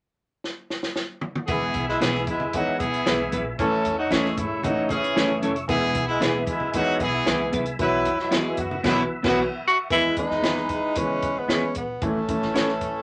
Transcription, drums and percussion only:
0.44 snare
0.70 snare
0.83 snare
0.96 snare
1.21 mid tom
1.35 mid tom
1.48 kick, closed hi-hat
1.74 kick, closed hi-hat, muted conga
1.89 snare
2.01 snare, closed hi-hat, high conga
2.27 kick, closed hi-hat, muted conga
2.40 low conga
2.53 kick, closed hi-hat
2.80 kick, closed hi-hat, muted conga
2.94 closed hi-hat
3.06 snare, closed hi-hat, high conga
3.32 kick, closed hi-hat, high conga
3.59 kick, closed hi-hat
3.85 closed hi-hat, muted conga
4.11 snare, closed hi-hat, high conga
4.25 snare
4.37 kick, closed hi-hat, muted conga
4.63 kick, closed hi-hat, low conga
4.89 kick, closed hi-hat, muted conga, low conga
5.04 closed hi-hat
5.16 snare, closed hi-hat, high conga
5.42 closed hi-hat, high conga
5.56 closed hi-hat
5.69 kick, closed hi-hat
5.95 kick, closed hi-hat
6.21 snare, closed hi-hat, high conga
6.46 kick, closed hi-hat, muted conga
6.60 low conga
6.73 kick, closed hi-hat
7.00 kick, closed hi-hat, muted conga
7.26 snare, closed hi-hat, high conga
7.53 kick, closed hi-hat, high conga
7.66 closed hi-hat
7.79 kick, closed hi-hat
8.05 closed hi-hat, muted conga
8.19 snare
8.31 snare, closed hi-hat, high conga
8.57 kick, closed hi-hat, muted conga
8.71 low conga
8.84 kick, snare, crash
9.24 kick, snare, crash
9.90 kick, closed hi-hat
10.17 kick, closed hi-hat
10.31 snare
10.43 snare, closed hi-hat
10.56 snare
10.69 kick, closed hi-hat
10.95 kick, closed hi-hat
11.22 kick, closed hi-hat
11.49 snare, closed hi-hat
11.75 kick, closed hi-hat
12.01 kick, closed hi-hat
12.28 kick, closed hi-hat
12.42 snare
12.55 snare, closed hi-hat
12.68 snare
12.81 kick, closed hi-hat

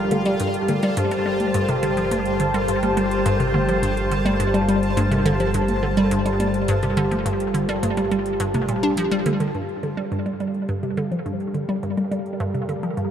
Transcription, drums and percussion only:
0.11 closed hi-hat, high tom
0.25 closed hi-hat
0.40 closed hi-hat
0.54 closed hi-hat
0.68 closed hi-hat, high tom
0.83 closed hi-hat
0.97 closed hi-hat
1.11 closed hi-hat
1.40 closed hi-hat, high tom
1.54 closed hi-hat
1.69 closed hi-hat
1.83 closed hi-hat
1.97 closed hi-hat
2.11 closed hi-hat, high tom
2.26 closed hi-hat
2.40 closed hi-hat
2.54 closed hi-hat
2.68 closed hi-hat
2.83 closed hi-hat, high tom
2.97 closed hi-hat
3.11 closed hi-hat
3.26 closed hi-hat
3.40 closed hi-hat
3.54 high tom
3.69 closed hi-hat
3.83 closed hi-hat
3.97 closed hi-hat
4.12 closed hi-hat
4.26 closed hi-hat, high tom
4.40 closed hi-hat
4.54 closed hi-hat
4.69 closed hi-hat
4.83 closed hi-hat
4.97 closed hi-hat, high tom
5.12 closed hi-hat
5.26 closed hi-hat
5.40 closed hi-hat
5.54 closed hi-hat
5.68 closed hi-hat, high tom
5.97 closed hi-hat
6.11 closed hi-hat
6.26 closed hi-hat
6.40 closed hi-hat, high tom
6.54 closed hi-hat
6.68 closed hi-hat
6.83 closed hi-hat
6.97 closed hi-hat
7.12 closed hi-hat, high tom
7.26 closed hi-hat
7.40 closed hi-hat
7.55 closed hi-hat
7.69 closed hi-hat
7.83 closed hi-hat, high tom
7.97 closed hi-hat
8.11 closed hi-hat
8.26 closed hi-hat
8.40 closed hi-hat
8.54 closed hi-hat, high tom
8.69 closed hi-hat
8.83 closed hi-hat
8.97 closed hi-hat
9.12 closed hi-hat
9.26 closed hi-hat, high tom
9.40 closed hi-hat
9.55 closed hi-hat
9.69 closed hi-hat
9.83 closed hi-hat, high tom
9.98 closed hi-hat
10.12 closed hi-hat
10.26 closed hi-hat
10.40 closed hi-hat
10.54 closed hi-hat, high tom
10.69 closed hi-hat
10.83 closed hi-hat
10.97 closed hi-hat
11.12 closed hi-hat
11.26 closed hi-hat, high tom
11.40 closed hi-hat
11.55 closed hi-hat
11.69 closed hi-hat
11.83 closed hi-hat
11.97 closed hi-hat, high tom
12.12 closed hi-hat
12.26 closed hi-hat
12.40 closed hi-hat
12.55 closed hi-hat
12.69 closed hi-hat, high tom
12.83 closed hi-hat
12.97 closed hi-hat

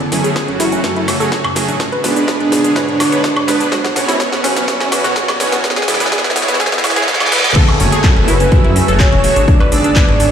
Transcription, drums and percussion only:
0.00 closed hi-hat
0.12 snare, open hi-hat, shaker
0.24 closed hi-hat, shaker
0.36 kick, snare, closed hi-hat, shaker
0.48 closed hi-hat
0.60 snare, open hi-hat, shaker
0.72 closed hi-hat, shaker
0.84 kick, snare, closed hi-hat, shaker
0.96 closed hi-hat
1.08 snare, open hi-hat, high woodblock, shaker
1.20 closed hi-hat, shaker
1.32 kick, snare, closed hi-hat, shaker
1.44 closed hi-hat, high woodblock
1.56 snare, open hi-hat, shaker
1.68 closed hi-hat, shaker
1.80 kick, snare, closed hi-hat, shaker
1.92 closed hi-hat
2.04 snare, open hi-hat, shaker
2.16 closed hi-hat, shaker
2.28 kick, snare, closed hi-hat, shaker
2.40 closed hi-hat
2.52 snare, open hi-hat, shaker
2.64 closed hi-hat, shaker
2.76 kick, snare, closed hi-hat, shaker
2.89 closed hi-hat
3.00 snare, open hi-hat, high woodblock, shaker
3.12 closed hi-hat, shaker
3.24 kick, snare, closed hi-hat, shaker
3.36 closed hi-hat, high woodblock
3.48 snare, open hi-hat, shaker
3.60 closed hi-hat, shaker
3.72 kick, snare, closed hi-hat, shaker
3.84 snare, closed hi-hat
3.96 snare, open hi-hat, shaker
4.09 snare, closed hi-hat, shaker
4.20 kick, snare, closed hi-hat, shaker
4.33 snare, closed hi-hat
4.44 snare, open hi-hat, shaker
4.56 snare, closed hi-hat, shaker
4.68 kick, snare, closed hi-hat, shaker
4.80 snare, closed hi-hat
4.92 snare, open hi-hat, high woodblock, shaker
5.04 snare, closed hi-hat, shaker
5.16 kick, snare, closed hi-hat, shaker
5.28 snare, closed hi-hat, high woodblock
5.40 snare, open hi-hat, shaker
5.52 snare, closed hi-hat, shaker
5.64 kick, snare, closed hi-hat, shaker
5.70 snare
5.76 snare, closed hi-hat
5.82 snare
5.88 snare, open hi-hat, shaker
5.94 snare
6.00 snare, closed hi-hat, shaker
6.06 snare
6.12 kick, snare, closed hi-hat, shaker
6.18 snare
6.24 snare, closed hi-hat
6.30 snare
6.36 snare, open hi-hat, shaker
6.42 snare
6.48 snare, closed hi-hat, shaker
6.54 snare
6.60 kick, snare, closed hi-hat, shaker
6.66 snare
6.72 snare, closed hi-hat
6.78 snare
6.84 snare, open hi-hat, high woodblock, shaker
6.90 snare
6.96 snare, closed hi-hat, shaker
7.02 snare
7.08 kick, snare, closed hi-hat, shaker
7.14 snare
7.20 snare, closed hi-hat, high woodblock
7.26 snare
7.32 snare, open hi-hat, shaker
7.38 snare
7.44 snare, closed hi-hat, shaker
7.50 snare
7.56 kick, closed hi-hat, crash, shaker
7.68 closed hi-hat, high woodblock
7.80 open hi-hat, shaker
7.92 closed hi-hat, shaker
8.04 kick, clap, closed hi-hat, shaker
8.16 closed hi-hat
8.28 open hi-hat, shaker
8.40 closed hi-hat, shaker
8.52 kick, closed hi-hat, shaker
8.64 closed hi-hat
8.76 open hi-hat, shaker
8.88 closed hi-hat, shaker
9.00 kick, clap, closed hi-hat, shaker
9.12 closed hi-hat
9.24 open hi-hat, shaker
9.36 closed hi-hat, shaker
9.48 kick, closed hi-hat, shaker
9.60 closed hi-hat, high woodblock
9.72 open hi-hat, shaker
9.84 closed hi-hat, shaker
9.96 kick, clap, closed hi-hat, shaker
10.08 closed hi-hat
10.20 open hi-hat, shaker

